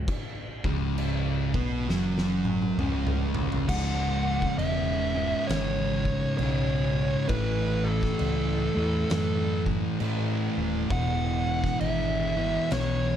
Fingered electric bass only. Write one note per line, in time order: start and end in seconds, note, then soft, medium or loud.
0.64 1.51 C#1 loud
1.54 1.86 B1 loud
1.88 2.74 F#1 medium
2.77 3.64 C#1 loud
3.69 4.44 C#1 loud
4.57 5.33 E1 medium
5.49 6.24 G#1 loud
6.39 7.14 B1 medium
7.29 8.05 A1 loud
8.20 8.67 C#2 medium
8.76 9.04 E2 loud
9.10 9.86 F#2 loud
10.00 10.47 A2 loud
10.57 10.85 D#1 medium
10.90 11.66 E1 loud
11.80 12.56 G#1 medium
12.71 13.16 B1 loud